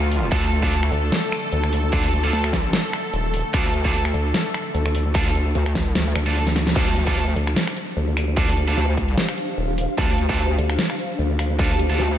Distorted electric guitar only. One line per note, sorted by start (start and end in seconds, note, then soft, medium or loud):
0.31 0.43 D4 medium
0.31 0.43 F4 medium
0.31 0.43 A4 loud
0.63 0.72 D4 medium
0.63 0.72 F4 medium
0.63 0.72 A4 medium
1.92 2.04 D4 loud
1.92 2.04 F4 medium
1.92 2.04 A4 medium
2.24 2.34 D4 medium
2.24 2.34 F4 medium
2.24 2.34 A4 medium
3.53 3.65 D4 medium
3.53 3.65 F4 medium
3.53 3.65 A4 medium
3.85 3.95 D4 medium
3.85 3.95 F4 medium
3.85 3.95 A4 medium
5.15 5.26 D4 medium
5.15 5.26 F4 medium
5.15 5.26 A4 medium
6.26 6.36 D4 medium
6.26 6.36 F4 medium
6.26 6.36 A4 loud
6.76 6.87 D4 medium
6.76 6.87 F4 medium
6.76 6.87 A4 medium
7.07 7.17 D4 medium
7.07 7.17 F4 medium
7.07 7.17 A4 medium
8.37 8.48 D4 medium
8.37 8.48 F4 medium
8.37 8.48 A4 medium
8.68 8.78 D4 medium
8.68 8.78 F4 medium
8.68 8.78 A4 medium
9.98 10.10 D4 loud
9.98 10.10 F4 medium
9.98 10.10 A4 medium
10.29 10.39 D4 medium
10.29 10.39 F4 medium
10.29 10.39 A4 medium
11.59 11.71 D4 medium
11.59 11.71 F4 medium
11.59 11.71 A4 medium
11.90 12.00 D4 medium
11.90 12.00 F4 medium
11.90 12.00 A4 medium